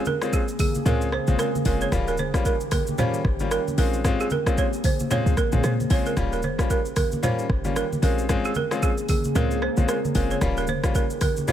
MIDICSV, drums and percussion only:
0, 0, Header, 1, 2, 480
1, 0, Start_track
1, 0, Tempo, 530973
1, 1737, Time_signature, 4, 2, 24, 8
1, 10416, End_track
2, 0, Start_track
2, 0, Title_t, "Drums"
2, 46, Note_on_c, 9, 82, 55
2, 60, Note_on_c, 9, 63, 86
2, 137, Note_off_c, 9, 82, 0
2, 150, Note_off_c, 9, 63, 0
2, 195, Note_on_c, 9, 37, 102
2, 197, Note_on_c, 9, 82, 52
2, 285, Note_off_c, 9, 37, 0
2, 288, Note_off_c, 9, 82, 0
2, 296, Note_on_c, 9, 82, 84
2, 298, Note_on_c, 9, 36, 100
2, 386, Note_off_c, 9, 82, 0
2, 388, Note_off_c, 9, 36, 0
2, 434, Note_on_c, 9, 82, 54
2, 524, Note_off_c, 9, 82, 0
2, 534, Note_on_c, 9, 46, 82
2, 534, Note_on_c, 9, 82, 62
2, 537, Note_on_c, 9, 36, 100
2, 553, Note_on_c, 9, 63, 83
2, 625, Note_off_c, 9, 46, 0
2, 625, Note_off_c, 9, 82, 0
2, 627, Note_off_c, 9, 36, 0
2, 644, Note_off_c, 9, 63, 0
2, 673, Note_on_c, 9, 82, 59
2, 686, Note_on_c, 9, 63, 79
2, 763, Note_off_c, 9, 82, 0
2, 775, Note_on_c, 9, 82, 92
2, 776, Note_off_c, 9, 63, 0
2, 778, Note_on_c, 9, 45, 108
2, 786, Note_on_c, 9, 64, 84
2, 866, Note_off_c, 9, 82, 0
2, 869, Note_off_c, 9, 45, 0
2, 876, Note_off_c, 9, 64, 0
2, 916, Note_on_c, 9, 82, 53
2, 1007, Note_off_c, 9, 82, 0
2, 1016, Note_on_c, 9, 37, 82
2, 1106, Note_off_c, 9, 37, 0
2, 1149, Note_on_c, 9, 82, 52
2, 1160, Note_on_c, 9, 63, 67
2, 1239, Note_off_c, 9, 82, 0
2, 1251, Note_off_c, 9, 63, 0
2, 1255, Note_on_c, 9, 82, 81
2, 1256, Note_on_c, 9, 37, 99
2, 1345, Note_off_c, 9, 82, 0
2, 1347, Note_off_c, 9, 37, 0
2, 1403, Note_on_c, 9, 82, 44
2, 1405, Note_on_c, 9, 63, 76
2, 1493, Note_off_c, 9, 82, 0
2, 1494, Note_on_c, 9, 46, 83
2, 1494, Note_on_c, 9, 82, 60
2, 1495, Note_off_c, 9, 63, 0
2, 1497, Note_on_c, 9, 36, 88
2, 1584, Note_off_c, 9, 46, 0
2, 1584, Note_off_c, 9, 82, 0
2, 1588, Note_off_c, 9, 36, 0
2, 1635, Note_on_c, 9, 82, 53
2, 1726, Note_off_c, 9, 82, 0
2, 1736, Note_on_c, 9, 36, 127
2, 1736, Note_on_c, 9, 37, 102
2, 1736, Note_on_c, 9, 82, 80
2, 1742, Note_on_c, 9, 64, 75
2, 1826, Note_off_c, 9, 36, 0
2, 1827, Note_off_c, 9, 37, 0
2, 1827, Note_off_c, 9, 82, 0
2, 1833, Note_off_c, 9, 64, 0
2, 1876, Note_on_c, 9, 82, 56
2, 1965, Note_off_c, 9, 82, 0
2, 1965, Note_on_c, 9, 82, 55
2, 1979, Note_on_c, 9, 63, 87
2, 2056, Note_off_c, 9, 82, 0
2, 2070, Note_off_c, 9, 63, 0
2, 2114, Note_on_c, 9, 36, 102
2, 2116, Note_on_c, 9, 37, 105
2, 2118, Note_on_c, 9, 82, 55
2, 2205, Note_off_c, 9, 36, 0
2, 2206, Note_off_c, 9, 37, 0
2, 2209, Note_off_c, 9, 82, 0
2, 2217, Note_on_c, 9, 36, 93
2, 2217, Note_on_c, 9, 82, 81
2, 2307, Note_off_c, 9, 82, 0
2, 2308, Note_off_c, 9, 36, 0
2, 2354, Note_on_c, 9, 82, 54
2, 2444, Note_off_c, 9, 82, 0
2, 2453, Note_on_c, 9, 46, 89
2, 2453, Note_on_c, 9, 82, 59
2, 2455, Note_on_c, 9, 37, 96
2, 2456, Note_on_c, 9, 36, 101
2, 2473, Note_on_c, 9, 63, 82
2, 2543, Note_off_c, 9, 46, 0
2, 2543, Note_off_c, 9, 82, 0
2, 2546, Note_off_c, 9, 36, 0
2, 2546, Note_off_c, 9, 37, 0
2, 2563, Note_off_c, 9, 63, 0
2, 2592, Note_on_c, 9, 82, 61
2, 2607, Note_on_c, 9, 63, 74
2, 2683, Note_off_c, 9, 82, 0
2, 2694, Note_on_c, 9, 82, 87
2, 2697, Note_off_c, 9, 63, 0
2, 2697, Note_on_c, 9, 45, 106
2, 2706, Note_on_c, 9, 64, 85
2, 2785, Note_off_c, 9, 82, 0
2, 2787, Note_off_c, 9, 45, 0
2, 2796, Note_off_c, 9, 64, 0
2, 2836, Note_on_c, 9, 82, 54
2, 2926, Note_off_c, 9, 82, 0
2, 2935, Note_on_c, 9, 36, 111
2, 2935, Note_on_c, 9, 37, 83
2, 3025, Note_off_c, 9, 36, 0
2, 3025, Note_off_c, 9, 37, 0
2, 3069, Note_on_c, 9, 82, 50
2, 3079, Note_on_c, 9, 63, 68
2, 3159, Note_off_c, 9, 82, 0
2, 3169, Note_off_c, 9, 63, 0
2, 3174, Note_on_c, 9, 82, 83
2, 3176, Note_on_c, 9, 37, 97
2, 3265, Note_off_c, 9, 82, 0
2, 3266, Note_off_c, 9, 37, 0
2, 3323, Note_on_c, 9, 82, 47
2, 3326, Note_on_c, 9, 63, 72
2, 3414, Note_off_c, 9, 82, 0
2, 3416, Note_off_c, 9, 63, 0
2, 3416, Note_on_c, 9, 46, 87
2, 3416, Note_on_c, 9, 82, 60
2, 3506, Note_off_c, 9, 46, 0
2, 3506, Note_off_c, 9, 82, 0
2, 3557, Note_on_c, 9, 82, 51
2, 3647, Note_off_c, 9, 82, 0
2, 3657, Note_on_c, 9, 36, 127
2, 3657, Note_on_c, 9, 37, 106
2, 3657, Note_on_c, 9, 82, 78
2, 3662, Note_on_c, 9, 64, 75
2, 3747, Note_off_c, 9, 36, 0
2, 3747, Note_off_c, 9, 37, 0
2, 3747, Note_off_c, 9, 82, 0
2, 3752, Note_off_c, 9, 64, 0
2, 3798, Note_on_c, 9, 82, 55
2, 3887, Note_off_c, 9, 82, 0
2, 3887, Note_on_c, 9, 82, 54
2, 3898, Note_on_c, 9, 63, 85
2, 3978, Note_off_c, 9, 82, 0
2, 3989, Note_off_c, 9, 63, 0
2, 4035, Note_on_c, 9, 36, 101
2, 4037, Note_on_c, 9, 37, 105
2, 4040, Note_on_c, 9, 82, 55
2, 4126, Note_off_c, 9, 36, 0
2, 4128, Note_off_c, 9, 37, 0
2, 4130, Note_off_c, 9, 82, 0
2, 4136, Note_on_c, 9, 82, 81
2, 4138, Note_on_c, 9, 36, 99
2, 4227, Note_off_c, 9, 82, 0
2, 4228, Note_off_c, 9, 36, 0
2, 4275, Note_on_c, 9, 82, 51
2, 4365, Note_off_c, 9, 82, 0
2, 4374, Note_on_c, 9, 46, 88
2, 4374, Note_on_c, 9, 82, 63
2, 4377, Note_on_c, 9, 36, 104
2, 4391, Note_on_c, 9, 63, 84
2, 4465, Note_off_c, 9, 46, 0
2, 4465, Note_off_c, 9, 82, 0
2, 4468, Note_off_c, 9, 36, 0
2, 4481, Note_off_c, 9, 63, 0
2, 4515, Note_on_c, 9, 82, 64
2, 4526, Note_on_c, 9, 63, 77
2, 4605, Note_off_c, 9, 82, 0
2, 4616, Note_off_c, 9, 63, 0
2, 4617, Note_on_c, 9, 82, 92
2, 4619, Note_on_c, 9, 45, 107
2, 4625, Note_on_c, 9, 64, 85
2, 4707, Note_off_c, 9, 82, 0
2, 4710, Note_off_c, 9, 45, 0
2, 4715, Note_off_c, 9, 64, 0
2, 4758, Note_on_c, 9, 82, 53
2, 4849, Note_off_c, 9, 82, 0
2, 4856, Note_on_c, 9, 36, 104
2, 4856, Note_on_c, 9, 37, 85
2, 4856, Note_on_c, 9, 82, 59
2, 4857, Note_on_c, 9, 63, 50
2, 4946, Note_off_c, 9, 36, 0
2, 4946, Note_off_c, 9, 82, 0
2, 4947, Note_off_c, 9, 37, 0
2, 4948, Note_off_c, 9, 63, 0
2, 4990, Note_on_c, 9, 82, 52
2, 4998, Note_on_c, 9, 45, 94
2, 4999, Note_on_c, 9, 63, 70
2, 5080, Note_off_c, 9, 82, 0
2, 5089, Note_off_c, 9, 45, 0
2, 5090, Note_off_c, 9, 63, 0
2, 5095, Note_on_c, 9, 82, 85
2, 5096, Note_on_c, 9, 37, 103
2, 5185, Note_off_c, 9, 82, 0
2, 5187, Note_off_c, 9, 37, 0
2, 5243, Note_on_c, 9, 82, 44
2, 5245, Note_on_c, 9, 63, 74
2, 5334, Note_off_c, 9, 82, 0
2, 5335, Note_off_c, 9, 63, 0
2, 5335, Note_on_c, 9, 46, 83
2, 5335, Note_on_c, 9, 82, 61
2, 5338, Note_on_c, 9, 36, 90
2, 5426, Note_off_c, 9, 46, 0
2, 5426, Note_off_c, 9, 82, 0
2, 5429, Note_off_c, 9, 36, 0
2, 5476, Note_on_c, 9, 82, 52
2, 5567, Note_off_c, 9, 82, 0
2, 5576, Note_on_c, 9, 37, 103
2, 5576, Note_on_c, 9, 82, 80
2, 5577, Note_on_c, 9, 36, 126
2, 5583, Note_on_c, 9, 64, 77
2, 5667, Note_off_c, 9, 36, 0
2, 5667, Note_off_c, 9, 37, 0
2, 5667, Note_off_c, 9, 82, 0
2, 5674, Note_off_c, 9, 64, 0
2, 5716, Note_on_c, 9, 82, 55
2, 5806, Note_off_c, 9, 82, 0
2, 5806, Note_on_c, 9, 82, 54
2, 5819, Note_on_c, 9, 63, 87
2, 5897, Note_off_c, 9, 82, 0
2, 5909, Note_off_c, 9, 63, 0
2, 5955, Note_on_c, 9, 36, 97
2, 5957, Note_on_c, 9, 37, 102
2, 5960, Note_on_c, 9, 82, 57
2, 6046, Note_off_c, 9, 36, 0
2, 6047, Note_off_c, 9, 37, 0
2, 6050, Note_off_c, 9, 82, 0
2, 6057, Note_on_c, 9, 82, 81
2, 6058, Note_on_c, 9, 36, 95
2, 6148, Note_off_c, 9, 36, 0
2, 6148, Note_off_c, 9, 82, 0
2, 6194, Note_on_c, 9, 82, 54
2, 6285, Note_off_c, 9, 82, 0
2, 6293, Note_on_c, 9, 46, 85
2, 6293, Note_on_c, 9, 82, 62
2, 6296, Note_on_c, 9, 37, 95
2, 6297, Note_on_c, 9, 36, 99
2, 6314, Note_on_c, 9, 63, 82
2, 6384, Note_off_c, 9, 46, 0
2, 6384, Note_off_c, 9, 82, 0
2, 6386, Note_off_c, 9, 37, 0
2, 6387, Note_off_c, 9, 36, 0
2, 6404, Note_off_c, 9, 63, 0
2, 6433, Note_on_c, 9, 82, 62
2, 6446, Note_on_c, 9, 63, 78
2, 6523, Note_off_c, 9, 82, 0
2, 6536, Note_off_c, 9, 63, 0
2, 6536, Note_on_c, 9, 82, 87
2, 6539, Note_on_c, 9, 45, 108
2, 6546, Note_on_c, 9, 64, 81
2, 6627, Note_off_c, 9, 82, 0
2, 6629, Note_off_c, 9, 45, 0
2, 6636, Note_off_c, 9, 64, 0
2, 6677, Note_on_c, 9, 82, 55
2, 6768, Note_off_c, 9, 82, 0
2, 6776, Note_on_c, 9, 36, 107
2, 6777, Note_on_c, 9, 37, 87
2, 6866, Note_off_c, 9, 36, 0
2, 6867, Note_off_c, 9, 37, 0
2, 6910, Note_on_c, 9, 82, 54
2, 6917, Note_on_c, 9, 63, 69
2, 7000, Note_off_c, 9, 82, 0
2, 7008, Note_off_c, 9, 63, 0
2, 7016, Note_on_c, 9, 82, 85
2, 7017, Note_on_c, 9, 37, 102
2, 7106, Note_off_c, 9, 82, 0
2, 7108, Note_off_c, 9, 37, 0
2, 7164, Note_on_c, 9, 82, 44
2, 7165, Note_on_c, 9, 63, 76
2, 7255, Note_off_c, 9, 63, 0
2, 7255, Note_off_c, 9, 82, 0
2, 7256, Note_on_c, 9, 46, 85
2, 7256, Note_on_c, 9, 82, 59
2, 7347, Note_off_c, 9, 46, 0
2, 7347, Note_off_c, 9, 82, 0
2, 7396, Note_on_c, 9, 82, 54
2, 7487, Note_off_c, 9, 82, 0
2, 7496, Note_on_c, 9, 36, 120
2, 7496, Note_on_c, 9, 37, 101
2, 7496, Note_on_c, 9, 82, 79
2, 7504, Note_on_c, 9, 64, 75
2, 7586, Note_off_c, 9, 37, 0
2, 7586, Note_off_c, 9, 82, 0
2, 7587, Note_off_c, 9, 36, 0
2, 7594, Note_off_c, 9, 64, 0
2, 7635, Note_on_c, 9, 82, 54
2, 7724, Note_off_c, 9, 82, 0
2, 7724, Note_on_c, 9, 82, 55
2, 7737, Note_on_c, 9, 63, 86
2, 7815, Note_off_c, 9, 82, 0
2, 7827, Note_off_c, 9, 63, 0
2, 7876, Note_on_c, 9, 37, 100
2, 7879, Note_on_c, 9, 82, 55
2, 7967, Note_off_c, 9, 37, 0
2, 7969, Note_off_c, 9, 82, 0
2, 7976, Note_on_c, 9, 82, 78
2, 7977, Note_on_c, 9, 36, 103
2, 8067, Note_off_c, 9, 82, 0
2, 8068, Note_off_c, 9, 36, 0
2, 8114, Note_on_c, 9, 82, 57
2, 8205, Note_off_c, 9, 82, 0
2, 8213, Note_on_c, 9, 46, 89
2, 8213, Note_on_c, 9, 82, 62
2, 8217, Note_on_c, 9, 36, 99
2, 8232, Note_on_c, 9, 63, 82
2, 8304, Note_off_c, 9, 46, 0
2, 8304, Note_off_c, 9, 82, 0
2, 8307, Note_off_c, 9, 36, 0
2, 8323, Note_off_c, 9, 63, 0
2, 8353, Note_on_c, 9, 82, 64
2, 8365, Note_on_c, 9, 63, 74
2, 8443, Note_off_c, 9, 82, 0
2, 8455, Note_off_c, 9, 63, 0
2, 8455, Note_on_c, 9, 82, 88
2, 8457, Note_on_c, 9, 45, 107
2, 8464, Note_on_c, 9, 64, 84
2, 8545, Note_off_c, 9, 82, 0
2, 8548, Note_off_c, 9, 45, 0
2, 8555, Note_off_c, 9, 64, 0
2, 8596, Note_on_c, 9, 82, 53
2, 8686, Note_off_c, 9, 82, 0
2, 8697, Note_on_c, 9, 37, 80
2, 8787, Note_off_c, 9, 37, 0
2, 8829, Note_on_c, 9, 82, 52
2, 8839, Note_on_c, 9, 63, 69
2, 8919, Note_off_c, 9, 82, 0
2, 8929, Note_off_c, 9, 63, 0
2, 8934, Note_on_c, 9, 82, 85
2, 8936, Note_on_c, 9, 37, 101
2, 9025, Note_off_c, 9, 82, 0
2, 9026, Note_off_c, 9, 37, 0
2, 9082, Note_on_c, 9, 82, 46
2, 9084, Note_on_c, 9, 63, 74
2, 9173, Note_off_c, 9, 82, 0
2, 9174, Note_off_c, 9, 63, 0
2, 9174, Note_on_c, 9, 46, 88
2, 9174, Note_on_c, 9, 82, 64
2, 9178, Note_on_c, 9, 36, 90
2, 9265, Note_off_c, 9, 46, 0
2, 9265, Note_off_c, 9, 82, 0
2, 9269, Note_off_c, 9, 36, 0
2, 9316, Note_on_c, 9, 82, 54
2, 9406, Note_off_c, 9, 82, 0
2, 9414, Note_on_c, 9, 37, 99
2, 9414, Note_on_c, 9, 82, 82
2, 9416, Note_on_c, 9, 36, 127
2, 9423, Note_on_c, 9, 64, 75
2, 9504, Note_off_c, 9, 37, 0
2, 9504, Note_off_c, 9, 82, 0
2, 9507, Note_off_c, 9, 36, 0
2, 9514, Note_off_c, 9, 64, 0
2, 9554, Note_on_c, 9, 82, 55
2, 9645, Note_off_c, 9, 82, 0
2, 9645, Note_on_c, 9, 82, 55
2, 9658, Note_on_c, 9, 63, 86
2, 9736, Note_off_c, 9, 82, 0
2, 9748, Note_off_c, 9, 63, 0
2, 9795, Note_on_c, 9, 36, 100
2, 9795, Note_on_c, 9, 37, 105
2, 9798, Note_on_c, 9, 82, 54
2, 9885, Note_off_c, 9, 36, 0
2, 9886, Note_off_c, 9, 37, 0
2, 9888, Note_off_c, 9, 82, 0
2, 9896, Note_on_c, 9, 82, 82
2, 9898, Note_on_c, 9, 36, 101
2, 9987, Note_off_c, 9, 82, 0
2, 9988, Note_off_c, 9, 36, 0
2, 10035, Note_on_c, 9, 82, 52
2, 10126, Note_off_c, 9, 82, 0
2, 10133, Note_on_c, 9, 46, 89
2, 10133, Note_on_c, 9, 82, 61
2, 10136, Note_on_c, 9, 37, 93
2, 10137, Note_on_c, 9, 36, 96
2, 10152, Note_on_c, 9, 63, 80
2, 10223, Note_off_c, 9, 46, 0
2, 10223, Note_off_c, 9, 82, 0
2, 10226, Note_off_c, 9, 37, 0
2, 10227, Note_off_c, 9, 36, 0
2, 10242, Note_off_c, 9, 63, 0
2, 10273, Note_on_c, 9, 82, 62
2, 10287, Note_on_c, 9, 63, 80
2, 10364, Note_off_c, 9, 82, 0
2, 10376, Note_on_c, 9, 82, 88
2, 10378, Note_off_c, 9, 63, 0
2, 10378, Note_on_c, 9, 45, 108
2, 10386, Note_on_c, 9, 64, 83
2, 10416, Note_off_c, 9, 45, 0
2, 10416, Note_off_c, 9, 64, 0
2, 10416, Note_off_c, 9, 82, 0
2, 10416, End_track
0, 0, End_of_file